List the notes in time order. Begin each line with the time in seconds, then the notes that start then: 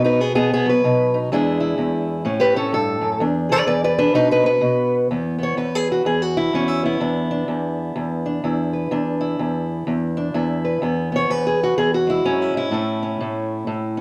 Already playing: B2 B3
0.04 D#4 B4
0.20 B3 G#4
0.35 B2 B3 G#4
0.53 B3 G#4
0.66 F#3 B4
0.84 B2 D#4
1.14 D#4
1.32 E2 G#3 D4 E4 G#4
1.60 E4
1.78 E2
2.25 A2 C#4
2.40 G4 B4
2.55 A3 C#4 A4
2.72 G2 A4
3.01 F#2
3.20 E2 D4
3.49 G#4 B4 D5
3.66 E2 B4 D5
3.84 B4 D5
3.99 D4 B4
4.14 B2 D#4 B4
4.31 D#4 B4
4.43 B3 B4
4.61 B2
5.11 E2 B3
5.38 B3
5.43 C#5
5.57 E2 B4
5.75 G#4
5.92 F#4
6.05 E2 G#4
6.22 F#4
6.37 E4
6.53 E2 C#4
6.68 E4
6.83 B3 E4
7.00 E2 D4
7.31 D4
7.48 E2
7.96 E2
8.26 D4
8.44 E2 E4
8.73 B4
8.91 E2 D4
9.21 E4
9.39 E2
9.87 E2
10.17 D4
10.34 E2 E4
10.65 B4
10.82 E2 B3
11.12 B3 C#5
11.30 E2 B4
11.47 G#4
11.63 F#4
11.78 E2 G#4
11.94 F#4
12.07 G#3 E4
12.25 F#2 C#4
12.42 E4
12.54 G#2 E4
12.71 A2 A3 C#4
13.03 C#4
13.21 A2
13.67 A2
13.97 C#4